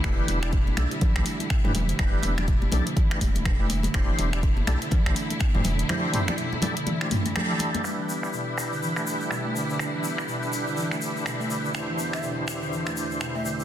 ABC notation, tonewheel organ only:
X:1
M:4/4
L:1/16
Q:"Swing 16ths" 1/4=123
K:Em
V:1 name="Tonewheel organ"
[DEGB]3 [DEGd] z2 [DEGA] z2 [DEGB] z3 [DEGB] z2 | [DEGB]3 [DEGd] z2 [DEGA] z2 [DEGB] z3 [DEGB] z2 | [DEGc]3 [DEGd] z2 [DEGA] z2 [DEGc] z3 [DEGc] z2 | [DEGc]3 [DEGd] z2 [DEGA] z2 [DEGc] z2 [DEGA]4 |
[DEGB]16- | [DEGB]16 | [E,DEGc]16 |]